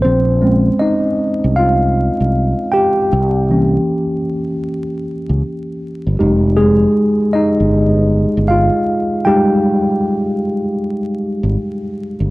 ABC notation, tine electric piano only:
X:1
M:4/4
L:1/8
Q:"Swing 16ths" 1/4=78
K:Fm
V:1 name="Tine electric piano"
[Cc]2 [Ee]2 [Ff]3 [Gg]- | [Gg]3 z4 z | z [A,A]2 [Ee]3 [Ff]2 | [Gg]6 z2 |]
V:2 name="Tine electric piano"
z [A,CD]6- [A,CD] | z [=E,B,D] z6 | [A,EG]8 | [G,A,E]8 |]